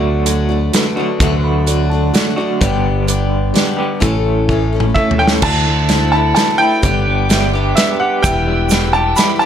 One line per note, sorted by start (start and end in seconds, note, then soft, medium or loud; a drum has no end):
0.00 0.69 D2 medium
0.00 1.20 D3 medium
0.00 0.25 F#3 medium
0.00 0.26 A3 medium
0.00 0.28 D4 medium
0.00 0.22 F#4 loud
0.00 0.27 F#4 medium
0.00 0.23 A4 medium
0.00 0.23 D5 loud
0.25 0.50 F#3 medium
0.25 0.50 A3 medium
0.25 0.49 D4 medium
0.25 0.69 F#4 medium
0.25 0.70 A4 medium
0.25 0.70 D5 medium
0.25 closed hi-hat medium
0.29 0.47 F#4 medium
0.49 0.74 A3 soft
0.49 0.74 D4 soft
0.49 0.73 F#4 soft
0.72 0.97 F#3 medium
0.72 0.98 A3 medium
0.72 0.98 D4 medium
0.72 1.60 F#4 medium
0.72 1.60 A4 medium
0.72 1.61 B4 medium
0.72 snare medium
0.72 closed hi-hat medium
0.77 0.96 F#4 medium
0.97 1.17 D3 medium
0.97 1.18 F#3 medium
0.97 1.21 A3 soft
0.97 1.21 D4 soft
0.97 1.20 F#4 medium
1.20 2.10 D2 loud
1.20 1.68 D3 medium
1.20 1.65 F#3 medium
1.20 1.67 A3 medium
1.20 1.69 D4 medium
1.20 1.69 F#4 medium
1.20 kick loud
1.20 closed hi-hat medium
1.44 1.88 B5 medium
1.66 1.90 F#3 medium
1.66 1.91 A3 medium
1.66 1.92 D4 medium
1.66 2.10 F#4 medium
1.66 2.11 A4 medium
1.66 2.11 D5 medium
1.66 closed hi-hat medium
1.70 1.90 F#4 medium
1.90 2.15 D4 soft
1.90 2.15 F#4 medium
1.90 2.12 A5 medium
1.95 2.14 A3 soft
2.13 2.37 F#3 medium
2.13 2.38 A3 medium
2.13 2.38 D4 medium
2.13 2.61 F#4 medium
2.13 2.36 F#4 medium
2.13 2.61 A4 medium
2.13 2.36 D5 medium
2.13 2.36 F#5 medium
2.13 snare medium
2.13 closed hi-hat medium
2.37 2.59 D3 medium
2.37 2.60 F#3 medium
2.37 2.61 A3 soft
2.37 2.62 D4 medium
2.37 2.61 F#4 medium
2.37 2.59 D5 medium
2.60 3.51 G1 loud
2.60 3.08 G2 medium
2.60 3.08 D3 medium
2.60 3.06 G3 medium
2.60 3.07 B3 medium
2.60 3.09 D4 medium
2.60 3.04 G4 medium
2.60 3.09 G4 medium
2.60 3.05 B4 medium
2.60 3.05 D5 medium
2.60 kick loud
2.60 closed hi-hat medium
3.07 3.53 G3 medium
3.07 3.54 B3 medium
3.07 3.55 D4 medium
3.07 3.52 G4 medium
3.07 3.56 G4 medium
3.07 3.52 B4 medium
3.07 3.53 D5 medium
3.07 closed hi-hat medium
3.54 4.01 G3 medium
3.54 4.01 B3 medium
3.54 4.02 D4 medium
3.54 4.01 G4 medium
3.54 4.02 G4 medium
3.54 4.02 B4 medium
3.54 4.02 D5 medium
3.54 snare medium
3.54 closed hi-hat medium
3.77 4.02 G2 medium
3.77 4.00 D3 medium
3.77 4.01 G3 medium
3.77 4.00 B3 medium
3.77 4.00 D4 medium
3.77 4.00 G4 medium
4.00 4.92 A1 medium
4.00 4.48 A2 medium
4.00 4.48 E3 medium
4.00 4.49 A3 medium
4.00 4.49 C#4 medium
4.00 4.45 E4 medium
4.00 4.45 A4 medium
4.00 4.49 A4 medium
4.00 4.46 C#5 medium
4.00 kick loud
4.00 closed hi-hat medium
4.48 4.72 E3 medium
4.48 4.73 A3 medium
4.48 4.73 C#4 medium
4.48 4.92 E4 medium
4.48 4.92 A4 medium
4.48 4.93 C#5 medium
4.48 kick medium
4.52 4.71 A4 medium
4.73 4.95 A3 soft
4.73 4.96 C#4 soft
4.73 4.96 A4 soft
4.80 mid tom medium
4.94 5.19 E3 medium
4.94 5.19 A3 medium
4.94 5.20 C#4 medium
4.94 5.41 E4 medium
4.94 5.43 A4 medium
4.94 5.18 A4 medium
4.94 5.43 C#5 medium
4.94 5.19 E5 medium
4.94 kick medium
5.11 floor tom medium
5.19 5.42 A2 medium
5.19 5.42 E3 medium
5.19 5.42 A3 soft
5.19 5.43 C#4 soft
5.19 5.43 A4 medium
5.19 5.24 G5 medium
5.27 snare medium
5.42 6.32 D2 loud
5.42 5.89 D3 medium
5.42 5.88 F#3 medium
5.42 5.90 A3 medium
5.42 5.91 D4 medium
5.42 5.86 E4 medium
5.42 5.90 E4 medium
5.42 5.86 F#4 medium
5.42 6.82 D5 medium
5.42 5.87 D5 medium
5.42 6.82 F#5 medium
5.42 6.09 A5 loud
5.42 6.82 E6 medium
5.42 kick loud
5.42 crash loud
5.66 6.35 A3 medium
5.88 6.13 F#3 medium
5.88 6.14 A3 medium
5.88 6.14 D4 medium
5.88 6.32 E4 medium
5.88 6.12 E4 medium
5.88 6.33 F#4 medium
5.88 6.34 C5 medium
5.88 snare medium
5.88 closed hi-hat medium
6.12 6.37 D4 soft
6.12 6.36 E4 soft
6.12 6.33 A5 medium
6.17 6.36 A3 soft
6.35 6.59 F#3 medium
6.35 6.60 A3 medium
6.35 6.60 D4 medium
6.35 6.82 E4 medium
6.35 6.83 F#4 medium
6.35 6.82 B4 medium
6.35 6.60 A5 medium
6.35 snare medium
6.35 closed hi-hat medium
6.39 6.58 E4 medium
6.58 6.83 D4 soft
6.58 6.83 E4 medium
6.58 7.49 G5 loud
6.62 6.83 A3 soft
6.82 7.73 G1 medium
6.82 7.30 G2 medium
6.82 7.30 D3 medium
6.82 7.29 G3 medium
6.82 7.30 B3 medium
6.82 7.30 D4 medium
6.82 7.26 G4 medium
6.82 7.32 G4 medium
6.82 8.22 B4 medium
6.82 7.27 B4 medium
6.82 7.27 D5 medium
6.82 8.22 G5 medium
6.82 8.22 D6 medium
6.82 kick loud
6.82 closed hi-hat medium
7.06 7.76 B3 medium
7.29 7.53 G3 medium
7.29 7.54 B3 medium
7.29 7.54 D4 medium
7.29 7.73 G4 medium
7.29 7.52 G4 medium
7.29 7.74 B4 medium
7.29 7.74 E5 medium
7.29 snare medium
7.29 closed hi-hat medium
7.53 7.75 G3 soft
7.53 7.77 B3 soft
7.53 7.77 D4 soft
7.53 7.77 G4 medium
7.75 8.24 G3 medium
7.75 8.24 B3 medium
7.75 8.25 D4 medium
7.75 8.21 G4 medium
7.75 8.25 G4 medium
7.75 8.21 B4 medium
7.75 7.98 E5 medium
7.75 8.23 E5 medium
7.75 snare medium
7.75 closed hi-hat medium
8.00 8.24 G4 medium
8.00 8.22 F#5 medium
8.22 9.13 E1 medium
8.22 8.71 E2 medium
8.22 8.71 B2 medium
8.22 8.70 E3 medium
8.22 8.71 G3 medium
8.22 8.66 G4 medium
8.22 8.67 B4 medium
8.22 9.46 B4 medium
8.22 8.67 E5 medium
8.22 8.96 G5 medium
8.22 9.46 G5 medium
8.22 9.46 E6 medium
8.22 kick loud
8.22 closed hi-hat medium
8.22 shaker loud
8.26 8.72 B3 medium
8.26 8.72 G4 medium
8.47 9.17 G3 medium
8.70 9.15 E3 medium
8.70 9.17 G3 medium
8.70 9.18 B3 medium
8.70 9.14 G4 medium
8.70 9.14 B4 medium
8.70 9.14 G5 medium
8.70 snare loud
8.70 closed hi-hat medium
8.70 shaker loud
8.74 9.19 G4 medium
8.93 9.40 G4 medium
8.93 9.18 A5 medium
8.93 shaker soft
9.16 9.46 E3 medium
9.16 9.46 G3 medium
9.16 9.46 B3 medium
9.16 9.46 G4 medium
9.16 9.46 B4 medium
9.16 9.46 E5 medium
9.16 9.41 B5 medium
9.16 snare medium
9.16 closed hi-hat medium
9.16 shaker medium
9.39 9.46 G4 medium
9.39 9.46 A5 loud
9.39 shaker soft